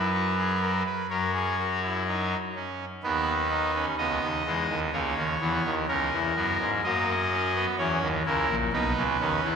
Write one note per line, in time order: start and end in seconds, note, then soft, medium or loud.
0.00 0.83 F#2 medium
0.00 0.83 F#3 medium
0.00 0.10 E4 soft
0.00 0.83 B4 medium
0.14 0.35 F#4 medium
0.38 0.59 G#4 medium
0.62 0.83 A#4 medium
0.86 1.07 B4 medium
1.10 2.34 F#2 medium
1.10 2.35 F#3 medium
1.10 1.31 A#4 medium
1.10 2.34 C#5 medium
1.34 1.55 G#4 medium
1.59 1.79 F#4 medium
1.83 2.03 E4 soft
2.08 2.37 D#4 medium
2.55 2.85 C#4 soft
3.03 3.85 D#2 medium
3.03 3.85 D#3 medium
3.03 3.33 B3 medium
3.03 3.85 B4 medium
3.51 3.71 D#4 medium
3.75 3.95 C#4 medium
3.98 4.18 C#2 medium
3.98 4.18 C#3 medium
3.98 4.27 B3 medium
3.98 4.80 D#5 medium
4.22 4.43 D#2 medium
4.22 4.42 D#3 medium
4.46 4.66 E2 medium
4.46 4.66 E3 medium
4.46 4.75 G#3 medium
4.69 4.90 D#2 medium
4.69 4.90 D#3 medium
4.93 5.13 C#2 medium
4.93 5.14 C#3 medium
4.93 5.22 A#3 medium
4.93 5.75 C#5 medium
5.16 5.37 D#2 medium
5.16 5.37 D#3 medium
5.40 5.61 E2 medium
5.40 5.61 E3 medium
5.40 5.70 B3 medium
5.64 5.85 D#2 medium
5.64 5.85 D#3 medium
5.88 6.09 C#2 medium
5.88 6.09 C#3 medium
5.88 6.18 C#4 medium
5.88 6.70 A#4 medium
6.13 6.33 E2 medium
6.13 6.33 E3 medium
6.36 6.57 F#2 medium
6.36 6.57 F#3 medium
6.36 6.66 B3 medium
6.60 6.81 G#2 medium
6.60 6.81 G#3 medium
6.84 7.66 F#2 medium
6.84 7.66 F#3 medium
6.84 7.14 A#3 medium
6.84 7.66 D#5 medium
7.32 7.52 C#4 medium
7.55 7.76 B3 medium
7.78 7.99 E2 medium
7.78 7.99 E3 medium
7.78 8.08 C#4 medium
7.78 8.08 C#5 medium
8.01 8.22 D#2 medium
8.01 8.22 D#3 medium
8.26 8.47 C#2 medium
8.26 8.46 C#3 medium
8.26 8.55 E4 medium
8.26 8.56 A#4 medium
8.49 8.70 A#1 medium
8.49 8.70 A#2 medium
8.73 8.93 B1 medium
8.73 8.93 B2 medium
8.73 9.02 D#4 medium
8.73 9.56 B4 medium
8.96 9.17 C#2 medium
8.96 9.17 C#3 medium
9.20 9.40 D#2 medium
9.20 9.40 D#3 medium
9.20 9.49 C#4 medium
9.43 9.56 E2 medium
9.43 9.56 E3 medium